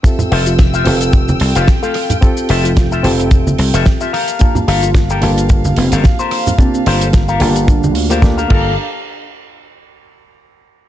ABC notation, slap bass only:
X:1
M:4/4
L:1/16
Q:"Swing 16ths" 1/4=110
K:Gdor
V:1 name="Slap bass" clef=bass
z2 F,,,4 F,,,4 C,, F,,, z4 | z2 F,,,4 F,,,4 C,, F,,, z4 | z2 G,,,4 G,,,4 F,,, G,,, z4 | z2 G,,,4 G,,,4 D,,4 G,,,2 |
z16 |]